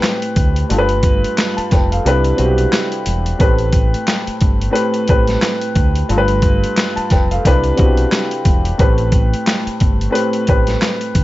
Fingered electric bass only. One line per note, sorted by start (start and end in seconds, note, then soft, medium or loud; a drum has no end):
0.37 0.63 D2 medium
0.71 1.23 G1 loud
1.58 muted fingered electric bass stroke soft
1.72 1.98 F1 medium
2.06 2.32 C2 loud
2.39 2.65 B1 loud
3.07 3.33 E1 medium
3.40 3.93 A1 loud
4.28 muted fingered electric bass stroke soft
4.42 4.68 G1 medium
5.09 5.35 A1 loud
5.76 6.02 D2 medium
6.10 6.62 G1 loud
6.97 muted fingered electric bass stroke soft
7.11 7.37 F1 medium
7.45 7.71 C2 loud
7.79 8.05 B1 loud
8.46 8.72 E1 medium
8.80 9.32 A1 loud
9.67 muted fingered electric bass stroke soft
9.81 10.07 G1 medium
10.49 10.75 A1 loud
11.15 11.24 D2 medium